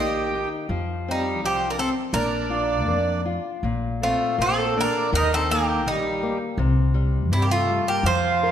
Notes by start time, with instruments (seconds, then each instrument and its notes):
Already playing: upright bass A#1, nylon-string guitar D#3
0.00 nylon-string guitar A#3, accordion G4, bouzouki D#5
0.35 nylon-string guitar D#4
0.69 upright bass F2, nylon-string guitar F3
1.08 accordion G3, nylon-string guitar C4, bouzouki D#4
1.42 upright bass C2, nylon-string guitar F3, accordion C4, bouzouki G4
1.70 accordion D4, bouzouki A#4
1.79 nylon-string guitar C4, accordion C4, bouzouki A4
2.13 upright bass A#1, nylon-string guitar A#3, accordion D4, bouzouki A#4
2.50 nylon-string guitar F4
2.86 upright bass F2, nylon-string guitar A#3
3.25 nylon-string guitar F4
3.63 upright bass A#1, nylon-string guitar A#2
4.02 accordion A3, nylon-string guitar C4, bouzouki F4
4.38 upright bass A#1, nylon-string guitar A#3, accordion C4, bouzouki A4
4.77 nylon-string guitar A#3, accordion D4
4.81 bouzouki A#4
5.12 upright bass D#2, nylon-string guitar D#3, accordion D#4, bouzouki A#4
5.34 accordion C4, bouzouki A4
5.51 nylon-string guitar A#3, accordion A#3, bouzouki G4
5.85 upright bass A#1, nylon-string guitar D#3, bouzouki D#4
5.89 accordion G3
6.23 nylon-string guitar A#3
6.58 upright bass C2, nylon-string guitar C3
6.94 nylon-string guitar G3
7.30 upright bass G2, nylon-string guitar C3, bouzouki E4
7.37 accordion G3
7.42 accordion A#3, bouzouki G4
7.51 accordion A3, bouzouki F4
7.70 nylon-string guitar G3
7.88 accordion A#3, bouzouki G4
8.03 upright bass F2, nylon-string guitar F3, accordion F4, bouzouki C5
8.43 nylon-string guitar A#4